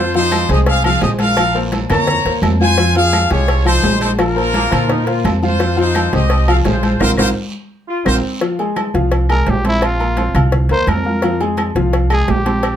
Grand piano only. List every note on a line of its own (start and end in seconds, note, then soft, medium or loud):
0.00 0.11 F3 medium
0.00 0.12 F4 medium
0.00 0.12 F5 loud
0.15 0.43 F3 loud
0.15 0.44 F4 loud
0.15 0.44 F5 loud
0.50 0.79 G#3 medium
0.50 0.79 G#4 medium
0.50 0.79 C5 medium
0.85 0.99 F3 medium
0.85 1.00 F4 medium
0.85 1.00 F5 loud
1.03 1.31 G#3 medium
1.03 1.32 G#4 medium
1.03 1.32 C5 medium
1.37 1.52 F3 medium
1.37 1.52 F4 loud
1.37 1.52 F5 medium
1.55 1.84 A#3 medium
1.55 1.84 A#4 medium
1.55 1.84 C5 medium
1.91 2.19 A#3 medium
1.91 2.20 A#4 medium
2.26 2.54 A#3 medium
2.26 2.55 A#4 medium
2.26 2.55 C5 medium
2.61 2.75 F3 medium
2.61 2.75 F4 medium
2.61 2.76 F5 medium
2.78 2.93 F3 medium
2.78 2.93 F4 loud
2.78 2.93 F5 medium
2.96 3.25 F3 medium
2.96 3.25 F4 medium
2.96 3.25 F5 medium
3.31 3.60 G#3 medium
3.31 3.60 G4 medium
3.31 3.60 G#4 medium
3.65 3.80 F3 medium
3.65 3.80 F4 medium
3.65 3.80 F5 medium
3.83 4.12 G#3 medium
3.83 4.12 G#4 medium
3.83 4.13 C5 medium
4.18 4.33 F3 medium
4.18 4.33 F4 medium
4.18 4.34 F5 medium
4.36 4.65 A#3 medium
4.36 4.65 A#4 medium
4.36 4.65 C5 medium
4.71 5.00 A#3 medium
4.71 5.00 A#4 medium
4.71 5.00 C5 medium
5.06 5.36 A#3 medium
5.06 5.36 A#4 medium
5.06 5.36 C5 medium
5.42 5.57 F3 medium
5.42 5.57 F4 medium
5.42 5.57 F5 medium
5.59 5.74 F3 medium
5.59 5.74 F4 medium
5.59 5.74 F5 medium
5.77 6.06 F3 loud
5.77 6.06 F4 loud
5.77 6.06 F5 loud
6.13 6.42 G#3 medium
6.13 6.42 G4 medium
6.13 6.42 C5 medium
6.48 6.62 F3 medium
6.48 6.62 F4 medium
6.48 6.63 F5 medium
6.66 6.94 G#3 medium
6.66 6.95 G#4 medium
6.66 6.95 C5 medium
7.01 7.12 C4 loud
7.01 7.12 F4 loud
7.01 7.12 A#4 loud
7.18 7.30 C4 loud
7.18 7.30 F4 loud
7.18 7.30 A#4 loud
8.05 8.17 C4 medium
8.05 8.17 F4 medium
8.05 8.17 A#4 medium
8.41 8.56 F3 medium
8.41 8.56 F4 medium
8.41 8.56 F5 medium
8.59 8.88 G#3 medium
8.59 8.88 G#4 medium
8.59 8.88 G#5 medium
8.94 9.23 F3 medium
8.94 9.23 F4 medium
8.94 9.23 F5 medium
9.29 9.58 G#3 medium
9.29 9.58 G#4 medium
9.29 9.59 G#5 medium
9.65 9.94 C4 medium
9.65 9.94 C5 medium
9.65 9.94 C6 medium
10.00 10.14 A#3 medium
10.00 10.14 A#4 medium
10.00 10.15 A#5 medium
10.18 10.32 C4 medium
10.18 10.32 C5 medium
10.18 10.32 C6 medium
10.35 10.64 F4 medium
10.35 10.64 F5 medium
10.35 10.64 F6 medium
10.71 11.00 A#3 medium
10.71 11.00 A#4 medium
10.71 11.00 A#5 medium
11.06 11.20 F4 medium
11.06 11.20 F5 medium
11.06 11.21 F6 medium
11.23 11.38 F3 medium
11.23 11.38 F4 medium
11.23 11.38 F5 medium
11.41 11.70 G#3 medium
11.41 11.70 G#4 medium
11.41 11.70 G#5 medium
11.76 12.05 F3 loud
11.76 12.05 F4 loud
11.76 12.05 F5 medium
12.10 12.40 G#3 medium
12.10 12.40 G#4 medium
12.10 12.40 G#5 medium
12.46 12.75 C4 medium
12.46 12.75 C5 medium
12.46 12.75 C6 medium